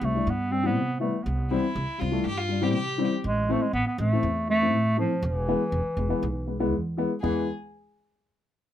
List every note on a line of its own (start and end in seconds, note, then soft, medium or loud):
0.01 0.17 C2 loud
0.01 0.08 G3 soft
0.01 0.31 A3 medium
0.01 0.09 C4 soft
0.14 0.27 E3 medium
0.14 0.28 G3 medium
0.14 0.28 D4 medium
0.27 0.77 G2 loud
0.27 0.53 B3 loud
0.51 0.58 G3 soft
0.51 0.68 C4 loud
0.51 0.58 C4 medium
0.63 0.76 E3 medium
0.63 0.77 G3 medium
0.63 0.99 B3 loud
0.63 0.77 C4 medium
0.77 1.07 C3 medium
1.00 1.13 E3 medium
1.00 1.14 G3 medium
1.00 1.25 A3 medium
1.00 1.14 B3 medium
1.23 1.56 C2 loud
1.23 1.74 B3 medium
1.51 1.64 E3 medium
1.51 1.63 G3 medium
1.51 1.64 C4 loud
1.51 2.01 E4 medium
1.76 1.83 C2 loud
1.98 2.16 C2 loud
1.98 2.06 G3 soft
1.98 2.07 C4 medium
1.98 2.25 F4 medium
2.11 2.25 E3 medium
2.11 2.25 G3 medium
2.11 2.25 A3 medium
2.25 2.74 G2 medium
2.25 2.38 G4 loud
2.37 2.64 F4 loud
2.49 2.56 G3 medium
2.49 2.56 D4 medium
2.61 2.74 E3 medium
2.61 2.75 G3 medium
2.61 2.75 C4 medium
2.61 2.73 G4 loud
2.74 3.04 C3 medium
2.74 3.09 G4 loud
2.98 3.11 E3 medium
2.98 3.12 G3 medium
2.98 3.12 C4 medium
3.24 3.54 A1 loud
3.24 3.53 G#3 loud
3.49 3.62 E3 medium
3.49 3.62 A3 medium
3.49 3.63 A3 loud
3.49 3.62 C4 loud
3.62 3.73 G#3 medium
3.73 3.81 A1 medium
3.73 3.85 B3 loud
3.87 3.98 B3 loud
3.98 4.13 A1 loud
3.98 4.05 A3 soft
3.98 4.45 A3 loud
3.98 4.06 C4 soft
4.12 4.24 E3 medium
4.12 4.24 A3 medium
4.12 4.25 C4 medium
4.23 4.72 E2 medium
4.48 4.55 A3 soft
4.48 4.96 A3 loud
4.48 4.55 C4 soft
4.61 4.74 E3 medium
4.61 4.74 A3 medium
4.61 4.74 C4 medium
4.72 5.02 A2 loud
4.97 5.10 E3 medium
4.97 5.26 F3 medium
4.97 5.10 A3 medium
4.97 5.11 C4 medium
5.22 5.52 E1 loud
5.22 6.72 E3 medium
5.48 5.60 E3 medium
5.48 5.60 G#3 medium
5.48 5.61 B3 loud
5.72 5.80 E1 loud
5.97 6.12 E1 loud
5.97 6.03 G#3 soft
5.97 6.04 B3 medium
6.08 6.21 E3 medium
6.08 6.22 G#3 medium
6.08 6.22 B3 loud
6.23 6.73 B1 loud
6.47 6.53 G#3 medium
6.47 6.53 B3 medium
6.60 6.72 E3 loud
6.60 6.72 G#3 medium
6.60 6.72 B3 loud
6.73 7.03 E2 medium
6.97 7.09 E3 medium
6.97 7.09 G#3 medium
6.97 7.10 B3 loud
7.21 7.45 E2 loud
7.21 7.45 E3 medium
7.21 7.45 G#3 medium
7.21 7.45 B3 loud
7.21 7.44 G#4 medium